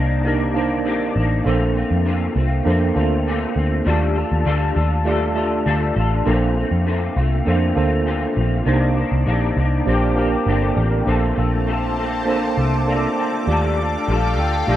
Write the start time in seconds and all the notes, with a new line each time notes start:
Already playing: C2 D#3 A#3 D4 D#4 C5
0.24 C3 D#3 A#3 D4 D#4 A#4
0.54 A#3 D4 D#4 C5
0.59 D#3
0.85 A#1 C3 D#3 A#3 D4
1.16 A1 A#3 D4
1.20 D#3
1.44 A#1 A#2 D3 A3 A#3 C4 D4 F4 A4 C5
1.75 C4 F4
1.79 A3
1.91 F2
2.05 A#2 D3 A3 C4 F4
2.35 C2 A3 C4 F4
2.64 F2 D3 A3 A#3 C4 D4 A4 C5
2.69 F4
2.94 D2 A#3 C4 D4 F4 A4 C5
2.99 A3
3.27 A#2 D3 A3 C4 F4
3.56 D2 A3 C4 F4
3.84 D#2 D#3 G3 A3 D4 F4 F#4 A4 D5
3.92 G4
4.15 D4 F4 A4
4.32 D#2
4.45 D2 G3 D4 F4 A4
4.75 D#2 D4 F4 A4
5.05 G3 A3 D4 F4 G4 A4 D5
5.35 A3 D4 F4 G4 A4 D5
5.66 D2 G3 D4 F4 A4
5.95 A1 D4 F4 A4
6.25 A#1 A#2 D3 A3 A#3 C4 D4 F4 A4 A#4
6.34 C5
6.56 A3 C4 F4
6.71 F2
6.86 A#2 D3 A3 C4 F4
7.16 C2 A3 C4 F4
7.45 F2 D3 A3 A#3 C4 D4 A4 C5
7.49 F4
7.75 D2 A3 A#3 C4 D4 F4 A4 C5
8.06 A#2 D3 A3 C4 F4
8.35 A#1 A3 C4 F4
8.65 C2 C3 D#3 A#3 D4 D#4 C5
8.96 D#3 A#3 D4
9.12 C2
9.26 A#1 C3 D#3 A#3 D4
9.56 C2 D#3 A#3 D4
9.85 A#1 F3 A#3 C4 D4 G4 C5
9.89 D4 G4
10.15 A#3 C4 D4 G4 A#4
10.20 F3
10.47 G1 A#2 D3 F3 C4 D4 G4
10.62 A4 C5
10.76 A1 F3 C4 D4 G4 A#4 D5
10.91 G4 A#4
11.05 A#1 A#2 D3 A3 A#3 C4 D4 F4 A4 C5 A5 D6
11.35 A#1 C4 F4 A4
11.39 A3
11.66 A3 C4 F4 A4
11.97 A3 C4 F4 A4
12.25 A#2 D3 A3 A#3 C4 D4 F4 A4 C5
12.57 C2 A3 C4 F4 A4
12.86 A3 A#3 C4 D4 F4 A4 D5
12.91 A4
13.18 A3 C4 F4 A4
13.46 D#2 D#3 G3 A3 F4 G4 A4 D5 F5 G5
13.50 D4 F4 A4
13.78 D4 F4 A4
14.08 A#1 G3 D4 F4
14.12 A4
14.37 D2 D4 F4 A4
14.67 A#1 D#3 G3 A3 D4 F4 G4 D5
14.71 A4